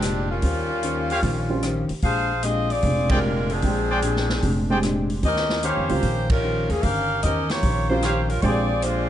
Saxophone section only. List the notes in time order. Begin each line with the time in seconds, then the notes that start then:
Already playing: F3 C4 D4 G4
0.30 G3 A#3 C#4 F4
2.04 D4 G#4 C5 F5
2.44 C4 F4 G#4 D#5
2.70 C4 F4 G#4 D5
3.11 G#3 D4 F4 A#4
3.51 F3 C4 D4 G#4
5.25 C#4 G4 A#4 D#5
5.64 A#3 F4 G4 C#5
5.90 A#3 F4 G4 C5
6.29 G3 C#4 F4 A#4
6.70 F3 A#3 C#4 G#4
6.82 C#4 G4 A#4 F5
7.23 C#4 G4 A#4 D#5
7.49 A#3 F4 G4 C#5
7.89 A#3 F4 G4 C5
8.28 G3 C#4 F4 A#4
8.40 C4 F4 C#5 D5
8.44 G#4
8.83 G#3 D4 F4 C5